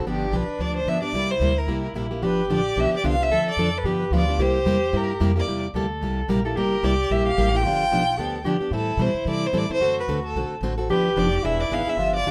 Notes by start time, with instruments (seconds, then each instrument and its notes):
0.05 upright bass G1, steel-string acoustic guitar D3 F3 B3 D4 G4, soprano saxophone D4
0.09 violin G4
0.32 upright bass B1, steel-string acoustic guitar D3 F3 B3 D4 G4, violin B4
0.48 muted upright bass stroke
0.59 upright bass D2, steel-string acoustic guitar D3 F3 B3 D4 G4, violin D5
0.77 violin C5
0.86 upright bass G2, steel-string acoustic guitar D3 F3 B3 D4 G4, violin E5
1.02 steel-string acoustic guitar B3 D4 G4, violin D5
1.13 upright bass C2, steel-string acoustic guitar C3 G3 A#3 E4 G4, soprano saxophone E4
1.31 violin C5
1.40 upright bass D2, steel-string acoustic guitar C3 G3 A#3 E4 G4
1.58 violin A#4
1.67 upright bass C2, steel-string acoustic guitar C3 G3 A#3 E4 G4
1.94 upright bass A#1, steel-string acoustic guitar C3 G3 A#3 E4 G4, soprano saxophone E4
2.11 steel-string acoustic guitar A#3 E4 G4
2.22 upright bass G1, steel-string acoustic guitar D3 F3 B3 D4 G4, soprano saxophone G4, violin B4
2.49 upright bass A1, steel-string acoustic guitar D3 F3 B3 D4 G4
2.53 violin D5
2.76 upright bass B1, steel-string acoustic guitar D3 F3 B3 D4 G4, violin E5
2.92 muted upright bass stroke
2.97 violin D5
3.04 upright bass C2, steel-string acoustic guitar D3 F3 B3 D4 G4, soprano saxophone F4
3.08 violin F5
3.20 steel-string acoustic guitar B3 D4 G4, violin E5
3.30 upright bass D2, steel-string acoustic guitar D3 F3 C4 D4 A4, soprano saxophone A4
3.45 muted upright bass stroke
3.51 violin D5
3.56 upright bass F2, steel-string acoustic guitar D3 F3 C4 D4 A4
3.78 violin B4
3.84 upright bass G2, steel-string acoustic guitar D3 F3 B3 D4 G4, soprano saxophone G4
4.11 upright bass D2, steel-string acoustic guitar D3 F3 B3 D4 G4, soprano saxophone F4
4.16 violin D5
4.28 steel-string acoustic guitar B3 D4 G4
4.38 upright bass C2, steel-string acoustic guitar C3 G3 A#3 E4 G4, soprano saxophone G4, violin C5
4.65 upright bass E2, steel-string acoustic guitar C3 G3 A#3 E4 G4
4.93 upright bass G2, steel-string acoustic guitar C3 G3 A#3 E4 G4, violin A#4
5.20 upright bass F2, steel-string acoustic guitar C3 G3 A#3 E4 G4
5.36 steel-string acoustic guitar A#3 E4 G4, violin D5
5.48 upright bass E2, steel-string acoustic guitar C3 G3 A#3 E4 G4
5.74 upright bass D2, steel-string acoustic guitar C3 G3 A#3 E4 G4, soprano saxophone A4
6.01 upright bass C2, steel-string acoustic guitar C3 G3 A#3 E4 G4
6.28 upright bass A#1, steel-string acoustic guitar C3 G3 A#3 E4 G4, soprano saxophone A#4
6.45 steel-string acoustic guitar A#3 E4 G4, soprano saxophone A4
6.56 upright bass G1, steel-string acoustic guitar C3 G3 A#3 E4 G4, soprano saxophone G4, violin A#4
6.83 upright bass C2, steel-string acoustic guitar C3 G3 A#3 E4 G4, violin D5
7.10 upright bass A#1, steel-string acoustic guitar C3 G3 A#3 E4 G4, violin E5
7.27 violin F5
7.37 upright bass A1, steel-string acoustic guitar C3 G3 A#3 E4 G4
7.53 steel-string acoustic guitar A#3 E4 G4, violin G5
7.63 upright bass G1, steel-string acoustic guitar D3 F3 B3 D4 G4, soprano saxophone F4
7.92 upright bass B1, steel-string acoustic guitar D3 F3 B3 D4 G4
8.18 upright bass D2, steel-string acoustic guitar D3 F3 B3 D4 G4, soprano saxophone A4
8.44 upright bass G2, steel-string acoustic guitar D3 F3 B3 D4 G4, soprano saxophone G4
8.60 steel-string acoustic guitar B3 D4 G4, muted upright bass stroke
8.71 upright bass A2, steel-string acoustic guitar E3 G3 C4 E4 A4, soprano saxophone E4, violin A4
8.97 upright bass B2, steel-string acoustic guitar E3 G3 C4 E4 A4
9.01 violin C5
9.14 muted upright bass stroke
9.25 upright bass C3, steel-string acoustic guitar E3 G3 C4 E4 A4
9.30 violin D5
9.46 violin C5
9.53 upright bass A2, steel-string acoustic guitar E3 G3 C4 E4 A4
9.58 violin D5
9.69 steel-string acoustic guitar C4 E4 A4, muted upright bass stroke
9.73 violin C5
9.80 upright bass F#2, steel-string acoustic guitar D3 A3 C4 F#4 A4, soprano saxophone F#4
10.00 violin B4
10.08 upright bass D2, steel-string acoustic guitar D3 A3 C4 F#4 A4
10.26 violin A4
10.34 upright bass B1, steel-string acoustic guitar D3 A3 C4 F#4 A4
10.50 muted upright bass stroke
10.61 upright bass A1, steel-string acoustic guitar D3 A3 C4 F#4 A4
10.78 steel-string acoustic guitar C4 F#4 A4
10.89 upright bass G1, steel-string acoustic guitar D3 F3 B3 D4 G4, soprano saxophone G4, violin B4
11.16 upright bass F1, steel-string acoustic guitar D3 F3 B3 D4 G4, violin D5
11.43 upright bass E1, steel-string acoustic guitar E3 B3 D4 G#4, soprano saxophone E4, violin E5
11.61 violin D5
11.70 upright bass G#1, steel-string acoustic guitar E3 B3 D4 G#4, violin F5
11.86 steel-string acoustic guitar B3 D4 G#4, violin E5, muted upright bass stroke
11.97 upright bass G1, steel-string acoustic guitar D3 F3 B3 D4 G4, soprano saxophone F4
12.16 violin D5
12.24 upright bass B1, steel-string acoustic guitar D3 F3 B3 D4 G4